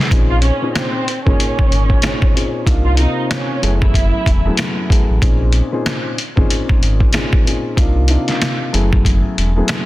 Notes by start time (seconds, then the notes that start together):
0.11 A#1 A#2 C4 C#4 D#4 G#4, kick, closed hi-hat
0.30 F4 F5
0.42 C#4 C#5, closed hi-hat
0.62 A#2 C4 C#4 D#4 G#4
0.75 C4 C5, snare, closed hi-hat
1.08 closed hi-hat
1.25 G#1 A#2 A#3 C#4 D#4 G#4 C#5, kick
1.40 closed hi-hat
1.59 kick
1.72 G#1, closed hi-hat
1.90 kick
2.02 A#2 C4 C#4 D#4 G#4, snare, closed hi-hat
2.22 kick
2.35 A#2 C4 C#4 D#4 G#4, closed hi-hat
2.65 C2 C3 A#3 D4 D#4 F4, kick, closed hi-hat
2.85 F4 F5
2.97 C3 A#3 C4 D#4 F4 D#5, closed hi-hat
3.31 C#4 C#5, snare, closed hi-hat
3.61 F#1 F#2 A3 B3 E4 G#4, closed hi-hat
3.81 E4 E5, kick
3.94 kick, closed hi-hat
4.26 E1, kick, closed hi-hat
4.45 F#2 A3 B3 E4 G#4
4.57 snare, closed hi-hat
4.89 F#2 A3 B3 E4 G#4, kick, closed hi-hat
5.10 A1
5.22 A#1 A#2 C4 C#4 D#4 G#4, kick, closed hi-hat
5.53 closed hi-hat
5.72 A#2 C4 C#4 D#4 G#4
5.86 snare, closed hi-hat
6.18 closed hi-hat
6.36 G#1 A#2 C4 C#4 D#4 G#4, kick
6.50 closed hi-hat
6.69 kick
6.82 G#1, closed hi-hat
7.00 kick
7.13 A#2 C4 C#4 D#4 G#4, snare, closed hi-hat
7.33 kick
7.46 A#2 C4 C#4 D#4 G#4, closed hi-hat
7.76 C2 C3 A#3 D4 D#4 F4, kick, closed hi-hat
8.08 C3 A#3 D4 D#4 F4, closed hi-hat
8.28 snare, closed hi-hat
8.42 snare, closed hi-hat
8.72 F#1 F#2 A3 B3 E4 G#4, closed hi-hat
8.93 kick
9.05 kick, closed hi-hat
9.38 E1, closed hi-hat
9.56 F#2 A3 B3 E4 G#4
9.68 snare, closed hi-hat